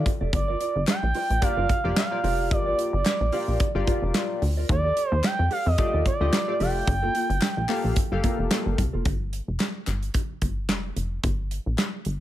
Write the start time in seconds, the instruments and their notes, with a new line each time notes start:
0.05 muted clean electric guitar stroke, kick, closed hi-hat
0.21 analog synth bass F1, clean electric guitar G4 A4 D5
0.33 analog synth bass G1, analog synth lead D5, kick, closed hi-hat
0.48 clean electric guitar F4 A#4 D5
0.60 clean electric guitar F4 A#4 D5, closed hi-hat
0.76 analog synth bass G1, muted clean electric guitar stroke
0.87 analog synth lead G5, muted clean electric guitar stroke, snare, clap, closed hi-hat
1.03 analog synth bass A#1, muted clean electric guitar stroke
1.14 clean electric guitar F4 A#4 D5, open hi-hat
1.30 analog synth bass A#1, clean electric guitar F4 A#4 D5, closed hi-hat
1.42 analog polysynth A#3 F4 G4 D5, analog synth lead F5, muted clean electric guitar stroke, kick, closed hi-hat
1.57 analog synth bass G1, clean electric guitar F4 A#4 D5
1.69 kick, closed hi-hat
1.84 analog synth bass F1, analog polysynth A#3 F4 G4 D5, muted clean electric guitar stroke
1.96 analog synth lead F5, muted clean electric guitar stroke, snare, clap, closed hi-hat
2.11 analog polysynth A#3 F4 G4 D5, muted clean electric guitar stroke
2.23 analog synth bass F1, analog polysynth A#3 F4 G4 D5, clean electric guitar F4 A#4 D5, open hi-hat
2.39 muted clean electric guitar stroke
2.51 analog synth bass G1, analog synth lead D5, kick, closed hi-hat
2.66 clean electric guitar F4 A#4 D5
2.78 clean electric guitar F4 A#4 D5, closed hi-hat
2.93 analog synth bass G1, analog synth lead D5, muted clean electric guitar stroke
3.05 muted clean electric guitar stroke, snare, clap, closed hi-hat
3.21 analog synth bass A#1, muted clean electric guitar stroke
3.32 analog polysynth A#3 F4 G4 D5, clean electric guitar F4 A#4 F5, open hi-hat
3.48 analog synth bass A#1, clean electric guitar F4 A#4 F5
3.60 muted clean electric guitar stroke, kick, closed hi-hat
3.75 analog synth bass G1, analog polysynth A#3 F4 G4 D5, muted clean electric guitar stroke
3.87 clean electric guitar F4 A#4 F5, kick, closed hi-hat
4.02 analog synth bass F1, muted clean electric guitar stroke
4.14 clean electric guitar F4 A#4 D5, snare, clap, closed hi-hat
4.30 muted clean electric guitar stroke
4.42 analog synth bass D2, muted clean electric guitar stroke, open hi-hat
4.57 clean electric guitar F4 A#4 D5
4.69 analog synth bass D#2, analog synth lead D5, muted clean electric guitar stroke, kick, closed hi-hat
4.84 clean electric guitar G4 A4 D5
4.96 clean electric guitar G4 A4 D5, closed hi-hat
5.10 analog synth bass D#2, analog synth lead C5, muted clean electric guitar stroke
5.24 analog synth lead G5, muted clean electric guitar stroke, snare, clap, closed hi-hat
5.39 analog synth bass F2, muted clean electric guitar stroke
5.51 clean electric guitar G4 A4 D5, analog synth lead F5, open hi-hat
5.66 analog synth bass F2, clean electric guitar G4 A4 D5, analog synth lead D#5
5.78 analog polysynth A3 F4 G4 D5, muted clean electric guitar stroke, kick, closed hi-hat
5.93 analog synth bass D#2, clean electric guitar G4 A4 D5
6.05 analog synth lead D5, muted clean electric guitar stroke, kick, closed hi-hat
6.21 analog synth bass D2, analog polysynth A3 F4 G4 D#5, muted clean electric guitar stroke
6.33 muted clean electric guitar stroke, snare, clap, closed hi-hat
6.48 analog polysynth A3 F4 G4 D5, muted clean electric guitar stroke
6.60 analog synth bass F1, analog polysynth A3 F4 G4 D5, clean electric guitar G4 A4 D5, analog synth lead G5, open hi-hat
6.76 muted clean electric guitar stroke
6.87 analog synth bass G1, muted clean electric guitar stroke, kick, closed hi-hat
7.03 clean electric guitar A#3 F4 A4
7.15 clean electric guitar A#3 F4 A4, closed hi-hat
7.30 analog synth bass G1, muted clean electric guitar stroke, closed hi-hat
7.42 muted clean electric guitar stroke, snare, clap, closed hi-hat
7.57 analog synth bass A#1, muted clean electric guitar stroke
7.69 analog polysynth A#3 G4 A4 F5, clean electric guitar A#3 F4 A#4, clap, open hi-hat
7.84 analog synth bass A#1, clean electric guitar A#3 F4 A#4
7.96 muted clean electric guitar stroke, kick, closed hi-hat
8.12 analog synth bass G1, analog polysynth A#3 G4 A4 F5, muted clean electric guitar stroke
8.23 clean electric guitar A#3 F4 A#4, kick, closed hi-hat
8.39 analog synth bass F1, muted clean electric guitar stroke
8.51 clean electric guitar A#3 F4 A4, snare, clap, closed hi-hat
8.66 analog synth bass G1, muted clean electric guitar stroke
8.78 analog synth bass C2, muted clean electric guitar stroke, kick, closed hi-hat
8.93 analog synth bass F1, clean electric guitar A#3 F4 A4
9.05 analog synth bass G1, kick, closed hi-hat
9.33 closed hi-hat
9.48 analog synth bass F1
9.60 snare, clap, closed hi-hat
9.87 analog synth bass G1, clap, closed hi-hat
10.03 closed hi-hat
10.14 kick, closed hi-hat
10.42 analog synth bass G1, kick, closed hi-hat
10.69 analog synth bass F1, snare, clap, closed hi-hat
10.96 analog synth bass F1, closed hi-hat
11.23 analog synth bass G1, kick, closed hi-hat
11.51 closed hi-hat
11.66 analog synth bass A#1
11.78 snare, clap, closed hi-hat
12.05 analog synth bass G1, closed hi-hat